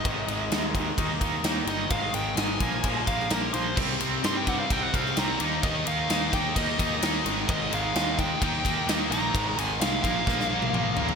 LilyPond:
<<
  \new Staff \with { instrumentName = "Lead electric guitar" } { \time 4/4 \key ees \major \tempo 4 = 129 ees''4. r2 ees''8 | f''8 g''8 aes''4. f''8 bes'8 c''8 | r4 c'''16 g''16 fis''16 f''16 g''16 fis''16 f''8 bes''8 r8 | ees''8 f''4 g''8 ees''4 r4 |
ees''8 f''4 g''8 g''4 r8 bes''8~ | bes''8 aes''8 f''8 f''2~ f''8 | }
  \new Staff \with { instrumentName = "Distorted electric guitar" } { \clef bass \time 4/4 \key ees \major r1 | r1 | <c g c'>2.~ <c g c'>8 <ees bes ees'>8~ | <ees bes ees'>2. <ees bes ees'>8 <aes, ees aes>8~ |
<aes, ees aes>2 <ees bes ees'>2 | <aes, ees aes>4. <bes, f bes>2~ <bes, f bes>8 | }
  \new Staff \with { instrumentName = "Overdriven electric guitar" } { \clef bass \time 4/4 \key ees \major <aes, ees aes>8 <aes, ees aes>8 <aes, ees aes>8 <aes, ees aes>8 <ees bes ees'>8 <ees bes ees'>8 <ees bes ees'>8 <ees bes ees'>8 | <aes, ees aes>8 <aes, ees aes>8 <aes, ees aes>8 <bes, f bes>8 <bes, f bes>8 <bes, f bes>8 <bes, f bes>8 <bes, f bes>8 | <c g c'>8 <c g c'>8 <c g c'>8 <c g c'>8 <c g c'>8 <c g c'>8 <c g c'>8 <ees bes ees'>8 | <ees bes ees'>8 <ees bes ees'>8 <ees bes ees'>8 <ees bes ees'>8 <ees bes ees'>8 <ees bes ees'>8 <ees bes ees'>8 <aes, ees aes>8 |
<aes, ees aes>8 <aes, ees aes>8 <aes, ees aes>8 <aes, ees aes>8 <ees bes ees'>8 <ees bes ees'>8 <ees bes ees'>8 <ees bes ees'>8 | <aes, ees aes>8 <aes, ees aes>8 <aes, ees aes>8 <bes, f bes>8 <bes, f bes>8 <bes, f bes>8 <bes, f bes>8 <bes, f bes>8 | }
  \new Staff \with { instrumentName = "Overdriven electric guitar" } { \clef bass \time 4/4 \key ees \major <aes, ees aes>8 <aes, ees aes>8 <aes, ees aes>8 <aes, ees aes>8 <ees bes ees'>8 <ees bes ees'>8 <ees bes ees'>8 <ees bes ees'>8 | <aes, ees aes>8 <aes, ees aes>8 <aes, ees aes>8 <bes, f bes>8 <bes, f bes>8 <bes, f bes>8 <bes, f bes>8 <bes, f bes>8 | <c g c'>8 <c g c'>8 <c g c'>8 <c g c'>8 <c g c'>8 <c g c'>8 <c g c'>8 <ees bes ees'>8 | <ees bes ees'>8 <ees bes ees'>8 <ees bes ees'>8 <ees bes ees'>8 <ees bes ees'>8 <ees bes ees'>8 <ees bes ees'>8 <aes, ees aes>8 |
<aes, ees aes>8 <aes, ees aes>8 <aes, ees aes>8 <aes, ees aes>8 <ees bes ees'>8 <ees bes ees'>8 <ees bes ees'>8 <ees bes ees'>8 | <aes, ees aes>8 <aes, ees aes>8 <aes, ees aes>8 <bes, f bes>8 <bes, f bes>8 <bes, f bes>8 <bes, f bes>8 <bes, f bes>8 | }
  \new Staff \with { instrumentName = "Picked electric bass" } { \clef bass \time 4/4 \key ees \major aes,,8 aes,,8 ees,4 ees,8 ees,8 ees,8 g,,8 | aes,,8 aes,,8 aes,,8 bes,,8 bes,,8 bes,,8 bes,,8 bes,,8 | c,8 c,8 g,4 c,8 c,8 c,8 ees,8 | ees,8 ees,8 ees,8 ees,8 ees,8 ees,8 ees,8 aes,,8 |
aes,,8 aes,,8 ees,4 ees,8 ees,8 ees,8 bes,,8 | aes,,8 aes,,8 c,8 bes,,8 bes,,8 bes,,8 bes,,8 bes,,8 | }
  \new DrumStaff \with { instrumentName = "Drums" } \drummode { \time 4/4 <bd cymr>8 cymr8 <cymr sn>8 <bd cymr>8 <bd cymr>8 <bd cymr>8 <cymr sn>8 cymr8 | <bd cymr>8 cymr8 <cymr sn>8 <bd cymr>8 <bd cymr>8 <bd cymr>16 sn16 <cymr sn>8 cymr8 | <cymc bd>8 cymr8 <cymr sn>8 <bd cymr>8 <bd cymr>8 <bd cymr>16 sn16 <cymr sn>8 cymr8 | <bd cymr>8 cymr8 <cymr sn>8 <bd cymr>8 <bd cymr>8 <bd cymr>8 <cymr sn>8 cymr8 |
<bd cymr>8 cymr8 <cymr sn>8 <bd cymr>8 <bd cymr>8 <bd cymr>8 <cymr sn>8 cymr8 | <bd cymr>8 cymr8 <cymr sn>8 <bd cymr>8 <bd sn>16 sn8 tommh16 toml8 tomfh16 tomfh16 | }
>>